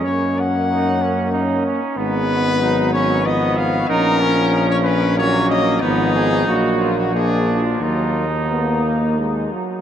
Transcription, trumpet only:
\new Staff \with { instrumentName = "Trumpet" } { \time 3/4 \key ees \minor \tempo 4 = 93 des''8 ges''2 r8 | ces''4. des''8 ees''8 f''8 | bes'4~ bes'16 des''16 ces''8 des''8 ees''8 | ees'4. f'16 ges'16 aes'8. f'16 |
f'8. r16 ees'4. r8 | }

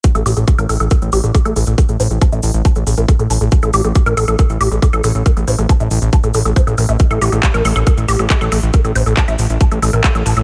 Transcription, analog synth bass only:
\new Staff \with { instrumentName = "Analog synth bass" } { \clef bass \time 4/4 \key c \mixolydian \tempo 4 = 138 r16 a,,16 a,,16 a,,16 r16 a,,16 a,,16 a,,16 r16 a,,16 a,,16 a,,16 r16 a,,16 a,,16 a,,16 | r16 a,,16 a,,16 a,,16 r16 a,,16 a,,16 a,,16 r16 a,,16 a,,16 a,,16 r16 a,,16 a,,16 a,,16 | r16 a,,16 a,,16 a,,16 r16 a,,16 a,,16 a,,16 r16 a,,16 a,,16 a,,16 r16 a,,16 a,,16 a,,16 | r16 a,,16 a,,16 a,,16 r16 a,,16 a,,16 a,,16 r16 a,,16 a,,16 a,,16 r16 a,,16 a,,16 a,,16 |
r16 a,,16 a,,16 a,,16 r16 a,,16 a,,16 a,,16 r16 a,,16 a,,16 a,,16 r16 a,,16 a,,16 a,,16 | r16 a,,16 a,,16 a,,16 r16 a,,16 a,,16 a,,16 r16 a,,16 a,,16 a,,16 r16 a,,16 a,,16 a,,16 | }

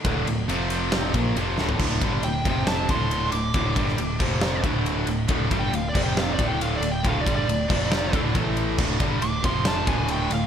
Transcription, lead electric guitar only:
\new Staff \with { instrumentName = "Lead electric guitar" } { \time 4/4 \key d \minor \tempo 4 = 137 r1 | r4 g''4 a''8 c'''4 d'''8~ | d'''2~ d'''8 r4. | \tuplet 3/2 { r4 g''8 f''8 d''8 g''8 f''8 d''8 g''8 f''8 d''8 g''8 } |
\tuplet 3/2 { f''8 d''8 d''8~ } d''4. r4. | r4 d'''8 c'''8 a''8 gis''8 g''8 f''8 | }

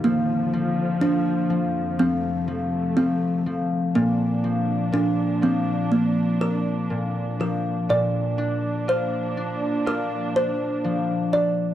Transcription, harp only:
\new Staff \with { instrumentName = "Harp" } { \clef bass \time 4/4 \key bes \major \tempo 4 = 61 f8 f8 f8 f8 f8 f8 f8 f8 | bes,8 f8 bes,8 f4. bes,8 f8 | bes,8 d'8 f'8 d'8 f'8 d'8 f8 d'8 | }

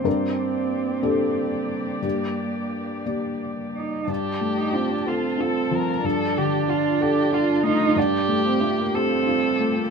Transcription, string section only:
\new Staff \with { instrumentName = "String section" } { \time 6/8 \key d \phrygian \tempo 4. = 61 <bes g' d''>2.~ | <bes g' d''>2. | <f f' a''>2.~ | <f f' a''>2. |
<a f' g'>2. | }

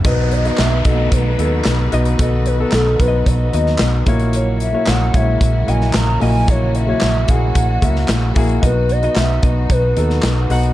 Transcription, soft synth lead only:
\new Staff \with { instrumentName = "Soft synth lead" } { \time 4/4 \key b \phrygian \tempo 4 = 112 b'8 dis''8 e''8 dis''8 b'4. r8 | dis''8 b'8 a'8 b'8 dis''4. r8 | cis''8 e''8 fis''8 e''8 e''8 gis''8 ais''8 gis''8 | cis''8 e''4 fis''2 r8 |
b'8 dis''8 e''8 dis''8 b'4. r8 | }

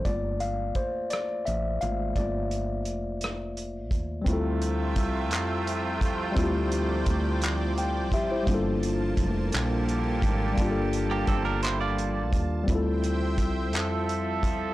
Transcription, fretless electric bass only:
\new Staff \with { instrumentName = "Fretless electric bass" } { \clef bass \time 6/8 \key d \minor \tempo 4. = 57 g,,4 r4 a,,8 gis,,8 | g,,4 f,,4. ees,8 | d,4 c,8 f,4 ees,8 | d,4 d,4. gis,,8 |
g,,4 f,,8 bes,,4 gis,,8 | g,,4 g,,4. ees,8 | d,4 c,8 f,4 ees,8 | }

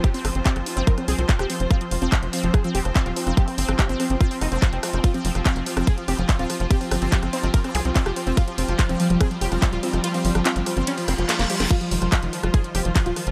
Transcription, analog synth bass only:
\new Staff \with { instrumentName = "Analog synth bass" } { \clef bass \time 4/4 \key c \phrygian \tempo 4 = 144 r8 g,,16 g,,16 r16 g,,16 r16 g,,16 r8 c,16 c,16 r16 f,,16 r16 f,,16 | r8 f,,16 f,,16 r16 f,,16 r16 f,,16 r8 f,,16 f,,16 r16 ees,,16 r16 f,,16 | r8 g,,16 g,,16 r16 g,,16 r16 g,,16 r8 f,,16 f,,16 r16 f,,16 r16 f,,16 | r8 f,,16 f,,16 r16 f,,16 r16 f,,16 r8 f,,16 f,,16 r16 ees,,16 r16 f,,16 |
r8 g,,16 g,,16 r16 g,,16 r16 g,,16 r8 c,16 c,16 r16 f,,16 r16 f,,16 | r8 f,,16 f,,16 r16 f,,16 r16 f,,16 r8 f,,16 f,,16 r16 ees,,16 r16 f,,16 | r8 g,,16 g,,16 r16 g,,16 r16 g,,16 r8 f,,16 f,,16 r16 f,,16 r16 f,,16 | r8 f,,16 f,,16 r16 f,,16 r16 f,,16 r8 f,,16 f,,16 r16 ees,,16 r16 f,,16 | }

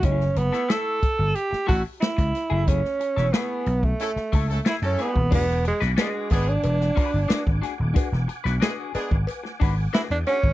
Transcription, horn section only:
\new Staff \with { instrumentName = "Horn section" } { \time 4/4 \key e \mixolydian \tempo 4 = 91 r1 | r2 <a cis' e' a'>16 r8 <a cis' e' a'>16 r16 <a cis' e' a'>8. | r4 <gis b d' gis'>16 r16 <gis b d' gis'>8 r2 | r4 <gis b d' gis'>16 r16 <gis b d' gis'>8 r2 | }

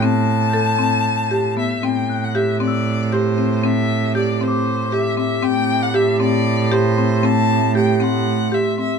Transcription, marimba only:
\new Staff \with { instrumentName = "Marimba" } { \time 7/8 \key a \dorian \tempo 4 = 116 c'4 a'8 c'4 g'8 b8 | c'4 g'8 c'4 g'8 c'8 | c'4 g'8 c'4 g'8 c'8 | c'4 g'8 c'4 g'8 c'8 |
c'4 g'8 c'4 g'8 c'8 | }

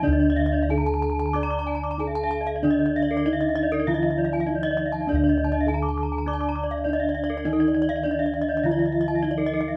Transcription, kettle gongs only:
<<
  \new Staff \with { instrumentName = "Kettle gongs" } { \time 4/4 \tempo 4 = 101 << { r4 ees'8 r4. ees'8 r8 | r4 ees'8 r4. ees'8 r8 | r4 ees'8 r4. ees'8 r8 | r4 ees'8 r4. ees'8 r8 | } \\ { d'2. r4 | d'2. r4 | d'2. r4 | ees'2. r4 | } >> }
  \new Staff \with { instrumentName = "Kettle gongs" } { \clef bass \time 4/4 << { d4 r2. | r2 d2~ | d4 r2. | r2 d2 | } \\ { d,1~ | d,2 r2 | d,1~ | d,2 r2 | } >> }
>>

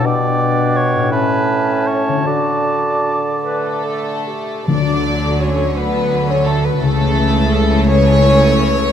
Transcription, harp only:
\new Staff \with { instrumentName = "Harp" } { \time 6/8 \key d \major \tempo 4. = 55 << { r2. | r2. | d16 d'16 a16 fis'16 a'16 fis'16 fis''16 a''16 fis''16 a'16 fis'16 a16 | cis16 cis'16 a16 e'16 a'16 e'16 e''16 a''16 e''16 a'16 e'16 a16 | } \\ { <b, b d' g'>4. <a, cis' e' a'>4. | <d d' fis' a'>2.~ | <d d' fis' a'>2.~ | <d d' fis' a'>2. | } >> }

